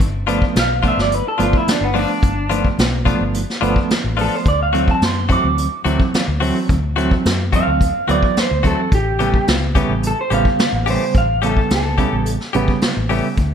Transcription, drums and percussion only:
0.00 kick, closed hi-hat
0.28 closed hi-hat
0.42 kick
0.56 snare, closed hi-hat
0.84 kick, closed hi-hat
0.99 snare
1.12 closed hi-hat
1.40 closed hi-hat
1.53 kick
1.68 snare, closed hi-hat
1.96 open hi-hat
2.23 kick, closed hi-hat
2.51 closed hi-hat
2.65 kick
2.79 snare, closed hi-hat
3.06 kick, closed hi-hat
3.34 closed hi-hat
3.50 snare
3.62 closed hi-hat
3.76 kick
3.90 snare, closed hi-hat
4.18 open hi-hat
4.46 kick, closed hi-hat
4.74 closed hi-hat
4.88 kick
5.02 snare, closed hi-hat
5.30 kick, closed hi-hat
5.58 closed hi-hat
5.86 closed hi-hat
6.00 kick
6.14 snare, closed hi-hat
6.42 open hi-hat
6.69 kick, closed hi-hat
6.98 closed hi-hat
7.11 kick
7.25 snare, closed hi-hat
7.53 kick, closed hi-hat
7.81 kick, closed hi-hat
8.09 closed hi-hat
8.23 kick
8.37 snare, closed hi-hat
8.64 kick, closed hi-hat
8.92 kick, closed hi-hat
9.20 closed hi-hat
9.34 kick
9.47 snare, closed hi-hat
9.75 kick, closed hi-hat
10.03 closed hi-hat
10.31 closed hi-hat
10.45 kick
10.59 snare, closed hi-hat
10.87 open hi-hat
11.15 kick, closed hi-hat
11.42 closed hi-hat
11.57 kick
11.70 snare, closed hi-hat
11.98 kick, closed hi-hat
12.26 closed hi-hat
12.41 snare
12.54 closed hi-hat
12.68 kick
12.81 snare, closed hi-hat
13.09 open hi-hat
13.37 kick, closed hi-hat

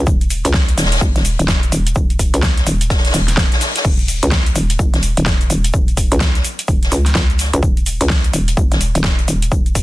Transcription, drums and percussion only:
0.07 kick, shaker
0.21 closed hi-hat, shaker
0.30 open hi-hat, shaker
0.45 closed hi-hat, shaker
0.53 kick, snare, open hi-hat, shaker
0.69 closed hi-hat, shaker
0.77 snare, open hi-hat, shaker
0.84 snare, open hi-hat
0.91 snare, closed hi-hat, open hi-hat, shaker
0.96 snare, open hi-hat
1.01 kick, shaker
1.16 snare, closed hi-hat, shaker
1.25 open hi-hat, shaker
1.39 closed hi-hat, shaker
1.48 kick, snare, shaker
1.63 closed hi-hat, shaker
1.72 open hi-hat, shaker
1.87 closed hi-hat, shaker
1.95 kick, shaker
2.10 closed hi-hat, shaker
2.19 kick, open hi-hat, shaker
2.34 closed hi-hat, shaker
2.42 kick, snare, shaker
2.57 snare, closed hi-hat, shaker
2.67 open hi-hat, shaker
2.81 closed hi-hat, shaker
2.90 kick, snare, open hi-hat, shaker
2.97 snare, open hi-hat
3.05 snare, closed hi-hat, open hi-hat, shaker
3.09 snare, open hi-hat
3.14 open hi-hat, shaker
3.28 snare, closed hi-hat, shaker
3.36 kick, snare, open hi-hat, shaker
3.52 snare, closed hi-hat, open hi-hat, shaker
3.61 snare, open hi-hat, shaker
3.76 snare, closed hi-hat, open hi-hat, shaker
3.85 kick, crash, shaker
3.99 closed hi-hat, shaker
4.08 open hi-hat, shaker
4.23 closed hi-hat, shaker
4.31 kick, snare, open hi-hat, shaker
4.46 closed hi-hat, shaker
4.55 open hi-hat, shaker
4.70 closed hi-hat, shaker
4.79 kick, shaker
4.94 snare, closed hi-hat, shaker
5.03 open hi-hat, shaker
5.17 closed hi-hat, shaker
5.26 kick, snare, shaker
5.41 closed hi-hat, shaker
5.50 open hi-hat, shaker
5.64 closed hi-hat, shaker
5.73 kick, shaker
5.88 closed hi-hat, shaker
5.97 kick, open hi-hat, shaker
6.12 closed hi-hat, shaker
6.20 kick, snare, shaker
6.22 snare
6.35 snare, closed hi-hat, shaker
6.44 open hi-hat, shaker
6.59 closed hi-hat, shaker
6.68 kick, open hi-hat, shaker
6.83 snare, closed hi-hat, shaker
6.92 open hi-hat, shaker
7.06 snare, closed hi-hat, shaker
7.15 kick, snare, shaker
7.30 closed hi-hat, shaker
7.39 snare, open hi-hat, shaker
7.53 closed hi-hat, shaker
7.63 kick, shaker
7.77 closed hi-hat, shaker
7.86 open hi-hat, shaker
8.01 closed hi-hat, shaker
8.09 kick, snare, open hi-hat, shaker
8.24 closed hi-hat, shaker
8.33 open hi-hat, shaker
8.48 closed hi-hat, shaker
8.57 kick, shaker
8.72 snare, closed hi-hat, shaker
8.81 open hi-hat, shaker
8.95 closed hi-hat, shaker
9.04 kick, snare, shaker
9.19 closed hi-hat, shaker
9.28 open hi-hat, shaker
9.42 closed hi-hat, shaker
9.52 kick, shaker
9.66 closed hi-hat, shaker
9.75 kick, open hi-hat, shaker

